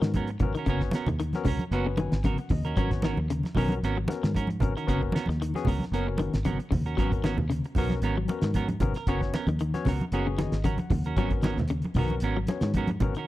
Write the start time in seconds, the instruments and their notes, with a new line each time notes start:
Already playing: tine electric piano B3 C#4 F#4 A#4
0.02 fingered electric bass G#2, clean electric guitar D#3, snare, closed hi-hat
0.14 clean electric guitar B3 C#4 F#4 A#4, kick, closed hi-hat, high conga
0.27 muted clean electric guitar stroke, closed hi-hat
0.40 fingered electric bass G#1, clean electric guitar C#3, tine electric piano B3 C#4 F#4 A#4, muted clean electric guitar stroke, kick, closed hi-hat, high conga, low conga
0.55 clean electric guitar D#3 C#4 F#4 A#4, closed hi-hat
0.66 fingered electric bass F#1, clean electric guitar C#3 B3 C#4 F#4 A#4, tine electric piano B3 C#4 F#4 C#5, kick, closed hi-hat
0.80 muted clean electric guitar stroke, kick, snare
0.91 clean electric guitar B3 C#4 A#4, snare, closed hi-hat, high conga
0.95 clean electric guitar F#4
1.06 fingered electric bass D#2, clean electric guitar D#3, muted clean electric guitar stroke, closed hi-hat, low conga
1.20 clean electric guitar D#3, muted clean electric guitar stroke, closed hi-hat
1.33 tine electric piano B3 C#4 F#4 A#4, muted clean electric guitar stroke, snare, closed hi-hat, high conga
1.45 fingered electric bass C#2, clean electric guitar C#3 C#4 F#4 A#4, kick, open hi-hat, low conga
1.59 closed hi-hat, high conga
1.71 fingered electric bass F#1, clean electric guitar B3 C#4 F#4 A#4, tine electric piano B3 C#4 F#4 B4, closed hi-hat
1.86 clean electric guitar C#3, muted clean electric guitar stroke
1.97 clean electric guitar D#3, tine electric piano G#5, muted clean electric guitar stroke, closed hi-hat, high conga
2.12 fingered electric bass G#1, snare, closed hi-hat
2.24 clean electric guitar C#3 B3 F#4 A#4, tine electric piano F#5, kick, closed hi-hat, high conga
2.38 muted clean electric guitar stroke, closed hi-hat
2.49 fingered electric bass D#2, clean electric guitar C#3, tine electric piano D#5, muted clean electric guitar stroke, kick, open hi-hat, high conga, low conga
2.64 clean electric guitar C#4 F#4 A#4, closed hi-hat
2.76 fingered electric bass G#1, clean electric guitar F#3 C#4 F#4 A#4, tine electric piano B3 C#4 F#4 C#5, muted clean electric guitar stroke, kick, closed hi-hat
2.91 muted clean electric guitar stroke, kick, snare, closed hi-hat
3.02 clean electric guitar D#3 B3 C#4 F#4 A#4, snare, closed hi-hat, high conga
3.17 fingered electric bass D#2, muted clean electric guitar stroke, high conga
3.30 clean electric guitar C#3, muted clean electric guitar stroke, closed hi-hat
3.43 muted clean electric guitar stroke, snare, closed hi-hat, high conga
3.55 fingered electric bass B1, clean electric guitar D#3 B3 C#4 F#4 A#4, tine electric piano B3 C#4 F#4 A#4, kick, open hi-hat, low conga
3.68 closed hi-hat, high conga
3.83 fingered electric bass G#1, clean electric guitar B3 C#4 F#4 A#4, closed hi-hat
3.98 clean electric guitar F#3, muted clean electric guitar stroke
4.08 tine electric piano B3 C#4 F#4 A#4, muted clean electric guitar stroke, snare, closed hi-hat, high conga
4.23 fingered electric bass G#2, clean electric guitar D#3, snare, closed hi-hat
4.34 clean electric guitar C#4 F#4 A#4, muted clean electric guitar stroke, kick, closed hi-hat, high conga
4.47 muted clean electric guitar stroke, closed hi-hat, high conga
4.60 fingered electric bass G#1, clean electric guitar C#3, tine electric piano B3 C#4 F#4 A#4, muted clean electric guitar stroke, kick, closed hi-hat, low conga
4.77 clean electric guitar D#3 C#4 F#4 A#4, closed hi-hat
4.87 fingered electric bass F#1, clean electric guitar C#3 B3 C#4 F#4 A#4, tine electric piano B3 C#4 F#4 A#4, kick, closed hi-hat
5.02 kick
5.12 clean electric guitar B3 C#4 F#4 A#4, snare, closed hi-hat, high conga
5.26 fingered electric bass D#2, clean electric guitar D#3, muted clean electric guitar stroke, high conga
5.30 snare, closed hi-hat
5.41 clean electric guitar D#3, muted clean electric guitar stroke, closed hi-hat
5.54 tine electric piano B3 C#4 F#4 G#4, muted clean electric guitar stroke, snare, closed hi-hat, high conga
5.65 fingered electric bass C#2, clean electric guitar C#3 B3 C#4 F#4 A#4, kick, open hi-hat, low conga
5.79 closed hi-hat, high conga
5.83 snare
5.92 fingered electric bass F#1, clean electric guitar B3 C#4 F#4 A#4, tine electric piano B3 C#4 F#4 A#4, closed hi-hat
6.08 clean electric guitar C#3, muted clean electric guitar stroke
6.18 clean electric guitar D#3, muted clean electric guitar stroke, closed hi-hat, high conga
6.33 fingered electric bass G#1, snare, closed hi-hat
6.45 clean electric guitar C#3 B3 C#4 F#4 A#4, kick, closed hi-hat, high conga
6.60 muted clean electric guitar stroke, closed hi-hat
6.71 fingered electric bass D#2, clean electric guitar C#3, muted clean electric guitar stroke, kick, open hi-hat, high conga, low conga
6.86 clean electric guitar C#4 F#4 A#4, closed hi-hat
6.97 fingered electric bass G#1, clean electric guitar F#3 B3 C#4 F#4 A#4, tine electric piano B3 C#4 F#4 A#4, kick, closed hi-hat
7.12 muted clean electric guitar stroke, kick, closed hi-hat
7.24 clean electric guitar D#3 B3 C#4 F#4 A#4, snare, closed hi-hat, high conga
7.37 fingered electric bass D#2, muted clean electric guitar stroke, low conga
7.50 clean electric guitar C#3, muted clean electric guitar stroke, closed hi-hat
7.64 muted clean electric guitar stroke, closed hi-hat
7.75 fingered electric bass B1, clean electric guitar B3 C#4 F#4 A#4, tine electric piano B3 C#4 F#4 A#4, kick, open hi-hat, low conga
7.90 snare, closed hi-hat, high conga
8.02 fingered electric bass G#1, clean electric guitar B3 C#4 F#4 A#4, closed hi-hat
8.17 clean electric guitar F#3, muted clean electric guitar stroke
8.28 tine electric piano B3 C#4 F#4 A#4, muted clean electric guitar stroke, closed hi-hat, high conga
8.41 fingered electric bass G#2, clean electric guitar D#3, snare, closed hi-hat
8.54 clean electric guitar B3 C#4 F#4 A#4, kick, closed hi-hat, high conga
8.68 muted clean electric guitar stroke, closed hi-hat, high conga
8.80 fingered electric bass G#1, clean electric guitar C#3, tine electric piano B3 C#4 F#4 A#4, muted clean electric guitar stroke, kick, closed hi-hat, high conga, low conga
8.94 clean electric guitar A#4, muted clean electric guitar stroke, snare, closed hi-hat
9.07 fingered electric bass F#1, clean electric guitar C#3 B3 C#4 F#4 A#4, tine electric piano B3 C#4 F#4 C#5, kick, closed hi-hat
9.21 muted clean electric guitar stroke, kick, snare
9.33 clean electric guitar B3 C#4 A#4, muted clean electric guitar stroke, snare, closed hi-hat, high conga
9.47 fingered electric bass D#2, clean electric guitar D#3, closed hi-hat, high conga
9.59 clean electric guitar D#3, muted clean electric guitar stroke, closed hi-hat
9.74 tine electric piano B3 C#4 F#4 C#5, muted clean electric guitar stroke, snare, closed hi-hat, high conga
9.85 fingered electric bass C#2, clean electric guitar C#3 B3 F#4 A#4, muted clean electric guitar stroke, kick, snare, open hi-hat, low conga
10.00 closed hi-hat, high conga
10.12 fingered electric bass F#1, tine electric piano B3 C#4 F#4 G#4, clean electric guitar B3 C#4 F#4 A#4, closed hi-hat
10.27 clean electric guitar C#3, muted clean electric guitar stroke
10.38 clean electric guitar D#3, tine electric piano D#5, muted clean electric guitar stroke, snare, closed hi-hat, high conga
10.52 fingered electric bass G#1, snare, closed hi-hat
10.64 clean electric guitar C#3 C#4 F#4 A#4, tine electric piano F#5, kick, closed hi-hat, high conga
10.78 muted clean electric guitar stroke, closed hi-hat, high conga
10.90 fingered electric bass D#2, clean electric guitar C#3, muted clean electric guitar stroke, kick, open hi-hat, high conga, low conga
11.04 clean electric guitar C#4 F#4 A#4, closed hi-hat
11.17 fingered electric bass G#1, clean electric guitar F#3 B3 C#4 F#4 A#4, tine electric piano B3 C#4 F#4 A#4, kick, closed hi-hat
11.30 muted clean electric guitar stroke, kick, closed hi-hat
11.42 clean electric guitar D#3 B3 C#4 F#4 A#4, snare, closed hi-hat, high conga
11.57 fingered electric bass D#2, muted clean electric guitar stroke, snare, low conga
11.68 clean electric guitar C#3, muted clean electric guitar stroke, closed hi-hat
11.82 muted clean electric guitar stroke, closed hi-hat, high conga
11.94 fingered electric bass B1, clean electric guitar D#3 B3, tine electric piano B3 C#4 F#4 A#4, kick, open hi-hat, low conga
11.98 clean electric guitar C#4 F#4 A#4
12.08 closed hi-hat, high conga
12.20 fingered electric bass G#1, clean electric guitar B3 C#4 F#4 A#4, closed hi-hat
12.37 clean electric guitar F#3, muted clean electric guitar stroke
12.47 tine electric piano B3 C#4 F#4 C#5, muted clean electric guitar stroke, snare, closed hi-hat, high conga
12.61 fingered electric bass G#2, clean electric guitar D#3, snare, closed hi-hat
12.74 clean electric guitar B3 C#4 F#4, kick, closed hi-hat, high conga
12.78 clean electric guitar A#4
12.87 muted clean electric guitar stroke, closed hi-hat, high conga
13.00 fingered electric bass G#1, clean electric guitar C#3, tine electric piano B3 C#4 F#4 A#4, muted clean electric guitar stroke, kick, closed hi-hat, low conga
13.15 clean electric guitar D#3 F#4 A#4, closed hi-hat
13.19 clean electric guitar C#4